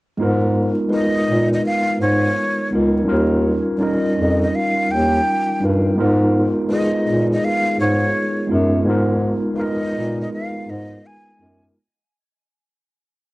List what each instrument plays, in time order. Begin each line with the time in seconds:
0.18 bass clarinet G#2, tine electric piano G#3 B3 D#4 F4
0.22 tine electric piano A#4
0.89 tine electric piano G#3 D#4 F4 B4
0.93 tine electric piano A#4, flute D#5
1.29 bass clarinet A#2
1.54 flute D#5
1.66 flute F5
2.01 bass clarinet G#2, flute C#5
2.70 bass clarinet C#2, tine electric piano G#3 B3 D#4 F4
2.75 tine electric piano A#4
3.04 tine electric piano G3 C#4 D#4 F4
3.09 bass clarinet D#2, tine electric piano A#4
3.77 tine electric piano G3 C#4 D#4 F4, flute D5
3.82 tine electric piano A#4, flute D#5
4.18 bass clarinet F2
4.42 flute D#5
4.55 flute F5
4.90 bass clarinet D#2, flute G5
5.60 bass clarinet G2, tine electric piano G3 C#4 D#4 F4
5.65 tine electric piano A#4
5.95 bass clarinet G#2, tine electric piano G#3 B3 D#4 F4
6.00 tine electric piano A#4
6.68 tine electric piano G#3 D#4 F4 B4, flute D#5
6.73 tine electric piano G#4
7.07 bass clarinet A#2
7.33 flute D#5
7.45 flute F5
7.79 bass clarinet G#2, flute C#5
8.47 tine electric piano G#3 B3 D#4 F4
8.51 bass clarinet F#2, tine electric piano A#4
8.85 bass clarinet G#2, tine electric piano G#3 B3 D#4 F4
8.90 tine electric piano A#4
9.55 tine electric piano G#3 D#4 F4 B4, flute F5
9.60 tine electric piano A#4, flute D#5
9.96 bass clarinet A#2
10.21 flute D#5
10.33 flute F5
10.68 bass clarinet G#2, flute D#5
11.06 flute G#5
11.37 bass clarinet F#2, tine electric piano G#3 B3 D#4 F4
11.42 tine electric piano A#4